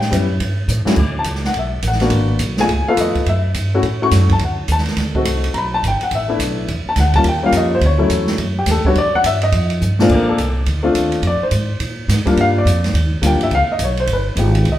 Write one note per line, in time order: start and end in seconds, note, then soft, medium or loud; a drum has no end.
0.00 0.11 A2 medium
0.00 0.13 G5 loud
0.00 snare soft
0.11 0.39 F#2 medium
0.11 0.28 G3 medium
0.11 0.28 B3 medium
0.11 0.28 C#4 medium
0.11 0.29 E4 medium
0.11 kick soft
0.11 hi-hat pedal medium
0.11 ride medium
0.40 0.67 G2 medium
0.40 kick soft
0.40 ride medium
0.68 0.85 A2 medium
0.68 hi-hat pedal medium
0.85 0.96 D2 medium
0.85 0.97 F#3 medium
0.85 0.96 A3 medium
0.85 0.97 C#4 medium
0.85 0.97 E4 medium
0.85 muted upright bass stroke soft
0.85 snare medium
0.96 1.25 D2 medium
0.96 kick medium
0.96 crash medium
1.19 1.44 A5 medium
1.24 1.54 C#2 medium
1.24 kick soft
1.24 hi-hat pedal soft
1.24 ride medium
1.35 snare soft
1.45 1.56 F#5 medium
1.45 snare soft
1.54 1.82 B1 medium
1.54 kick soft
1.54 ride medium
1.59 1.84 E5 medium
1.82 2.10 A1 medium
1.82 kick soft
1.82 hi-hat pedal medium
1.82 ride medium
1.87 2.03 F#5 medium
1.92 snare soft
2.00 2.38 A#3 medium
2.00 2.38 B3 medium
2.00 2.39 D4 medium
2.00 2.39 F#4 medium
2.00 snare soft
2.00 ride soft
2.10 2.39 G#1 medium
2.10 kick soft
2.10 ride medium
2.39 2.67 B1 medium
2.39 kick soft
2.39 hi-hat pedal medium
2.39 ride medium
2.57 2.68 A3 medium
2.57 2.68 B3 medium
2.57 2.69 F4 medium
2.57 2.69 G#4 medium
2.57 2.86 G#5 loud
2.57 snare medium
2.68 2.85 C#2 medium
2.68 kick soft
2.68 ride medium
2.88 3.25 A3 medium
2.88 3.25 B3 medium
2.88 3.25 F4 medium
2.88 3.25 A4 medium
2.88 2.98 F5 loud
2.88 muted upright bass stroke soft
2.97 3.14 F2 medium
2.97 3.25 D#5 medium
2.97 kick soft
2.97 hi-hat pedal medium
2.97 ride medium
3.15 muted upright bass stroke soft
3.15 kick soft
3.15 ride soft
3.26 3.54 F#2 medium
3.26 3.45 E5 medium
3.26 ride medium
3.54 3.82 G2 medium
3.54 kick soft
3.54 hi-hat pedal soft
3.54 ride medium
3.74 3.83 A3 medium
3.74 3.83 C#4 medium
3.74 3.83 E4 medium
3.74 3.83 F#4 medium
3.83 4.11 A2 medium
3.83 kick soft
3.83 ride medium
4.02 4.39 A3 medium
4.02 4.39 C#4 medium
4.02 4.39 E4 medium
4.02 4.39 F#4 medium
4.02 4.29 C#6 loud
4.11 4.39 F#2 medium
4.11 kick soft
4.11 snare soft
4.11 hi-hat pedal medium
4.11 ride medium
4.29 4.42 A5 medium
4.29 kick medium
4.29 ride soft
4.39 4.68 D2 medium
4.39 kick soft
4.39 ride medium
4.44 4.69 F#5 medium
4.68 4.96 D#2 medium
4.68 kick soft
4.68 hi-hat pedal soft
4.68 ride medium
4.72 4.82 A5 medium
4.78 snare soft
4.86 snare soft
4.86 ride soft
4.97 5.24 D2 medium
4.97 kick soft
4.97 snare soft
4.97 ride medium
5.15 5.52 A3 medium
5.15 5.53 C4 medium
5.15 5.52 D#4 medium
5.15 5.53 F#4 medium
5.15 kick medium
5.25 5.53 C2 medium
5.25 kick soft
5.25 hi-hat pedal medium
5.25 ride medium
5.44 ride medium
5.54 5.82 B1 medium
5.54 5.56 A#5 medium
5.54 5.73 B5 medium
5.54 kick soft
5.54 ride medium
5.74 5.84 A5 loud
5.83 5.99 G1 medium
5.83 kick soft
5.83 hi-hat pedal soft
5.83 ride medium
5.88 6.02 G5 medium
6.01 6.12 F#5 medium
6.01 muted upright bass stroke soft
6.01 ride soft
6.11 6.39 A1 medium
6.11 kick soft
6.11 ride medium
6.15 6.40 E5 medium
6.28 6.66 A3 medium
6.28 6.66 B3 medium
6.28 6.66 D4 medium
6.28 6.66 E4 medium
6.39 6.67 B1 medium
6.39 kick soft
6.39 hi-hat pedal medium
6.39 ride medium
6.68 6.85 E2 medium
6.68 kick soft
6.68 ride medium
6.86 6.98 A5 medium
6.86 muted upright bass stroke soft
6.96 7.24 D2 medium
6.96 7.15 F#5 medium
6.96 kick soft
6.96 snare soft
6.96 hi-hat pedal medium
6.96 ride medium
7.14 7.25 G3 medium
7.14 7.25 A#3 medium
7.14 7.26 C#4 medium
7.14 7.25 F4 medium
7.14 7.25 A5 loud
7.14 kick medium
7.14 ride soft
7.24 7.52 D#2 medium
7.24 kick soft
7.24 ride medium
7.28 7.44 G5 medium
7.43 7.80 G3 medium
7.43 7.80 A#3 medium
7.43 7.80 C#4 medium
7.43 7.80 F4 medium
7.43 7.55 F5 medium
7.52 7.80 F2 medium
7.52 kick soft
7.52 hi-hat pedal medium
7.52 ride medium
7.57 7.72 D#5 medium
7.75 7.83 C5 medium
7.81 8.09 D2 medium
7.81 kick soft
7.81 ride medium
7.86 8.27 C#5 medium
7.98 8.36 F#3 medium
7.98 8.36 A3 medium
7.98 8.36 C#4 medium
7.98 8.37 E4 medium
8.10 8.38 E2 medium
8.10 kick soft
8.10 hi-hat pedal soft
8.10 ride medium
8.27 snare medium
8.38 8.66 F#2 medium
8.38 kick soft
8.38 ride medium
8.59 8.68 G4 medium
8.66 8.83 D#2 medium
8.66 kick soft
8.66 snare soft
8.66 hi-hat pedal medium
8.66 ride medium
8.71 8.86 A4 medium
8.84 8.95 G3 medium
8.84 8.95 B3 medium
8.84 8.95 D4 medium
8.84 8.96 F#4 medium
8.84 8.96 C#5 medium
8.84 muted upright bass stroke soft
8.84 kick medium
8.95 9.12 E2 medium
8.95 9.14 D5 loud
8.95 kick soft
8.95 ride medium
9.14 9.25 F#5 loud
9.14 muted upright bass stroke soft
9.24 9.52 G2 medium
9.24 9.42 E5 loud
9.24 kick soft
9.24 hi-hat pedal medium
9.24 ride medium
9.41 9.69 D#5 loud
9.41 ride soft
9.52 9.80 F2 loud
9.52 kick soft
9.52 ride medium
9.70 ride soft
9.81 10.09 G2 medium
9.81 hi-hat pedal medium
9.99 10.36 A#2 medium
9.99 10.37 A3 medium
9.99 10.37 C4 medium
9.99 10.37 D4 medium
9.99 10.37 F4 medium
9.99 snare medium
10.09 10.37 A#1 medium
10.09 kick medium
10.09 crash medium
10.14 10.29 A#4 medium
10.29 10.65 A4 medium
10.38 10.66 C2 medium
10.38 kick soft
10.38 hi-hat pedal medium
10.38 ride medium
10.66 10.94 D2 medium
10.66 kick soft
10.66 ride medium
10.83 11.21 A3 medium
10.83 11.21 C4 medium
10.83 11.21 D4 medium
10.83 11.21 F4 medium
10.95 11.22 D#2 medium
10.95 kick soft
10.95 hi-hat pedal medium
10.95 ride medium
11.12 ride soft
11.22 11.39 F2 medium
11.22 kick soft
11.22 ride medium
11.27 11.42 D5 medium
11.42 11.79 C5 medium
11.42 muted upright bass stroke soft
11.51 11.79 G#2 medium
11.51 kick soft
11.51 hi-hat pedal medium
11.51 ride medium
11.80 12.08 A#2 medium
11.80 kick soft
11.80 ride medium
12.08 12.25 G#2 medium
12.08 kick soft
12.08 snare soft
12.08 hi-hat pedal medium
12.08 ride medium
12.26 12.63 G3 medium
12.26 12.64 A#3 medium
12.26 12.64 D4 medium
12.26 12.64 F4 medium
12.26 muted upright bass stroke soft
12.26 kick soft
12.26 ride soft
12.37 12.65 G2 medium
12.37 ride medium
12.41 12.56 F5 loud
12.58 12.93 D5 medium
12.65 12.93 F2 medium
12.65 kick soft
12.65 hi-hat pedal soft
12.65 ride medium
12.84 snare soft
12.84 ride soft
12.94 13.21 D#2 medium
12.94 kick soft
12.94 ride medium
13.22 13.34 D2 medium
13.22 13.51 G3 medium
13.22 13.51 A#3 medium
13.22 13.51 D4 medium
13.22 13.51 F4 medium
13.22 kick soft
13.22 hi-hat pedal medium
13.22 ride medium
13.26 13.42 G5 medium
13.32 13.40 A#1 medium
13.41 13.50 G1 medium
13.41 13.52 E5 medium
13.41 ride soft
13.51 13.68 C#2 medium
13.51 13.70 F5 loud
13.51 kick soft
13.51 ride soft
13.68 13.81 D#5 medium
13.68 muted upright bass stroke soft
13.79 14.06 B1 medium
13.79 kick soft
13.79 hi-hat pedal medium
13.79 ride medium
13.84 13.99 C#5 medium
13.97 14.09 C5 medium
13.97 ride soft
14.07 14.35 G1 medium
14.07 kick soft
14.07 ride medium
14.13 14.22 B4 medium
14.36 14.64 G#1 medium
14.36 14.66 G#3 medium
14.36 14.66 B3 soft
14.36 14.66 F4 soft
14.36 14.67 G4 medium
14.36 kick soft
14.36 hi-hat pedal medium
14.36 ride medium
14.55 ride medium
14.65 14.79 C2 medium
14.65 kick soft
14.65 ride soft
14.72 14.79 D#5 medium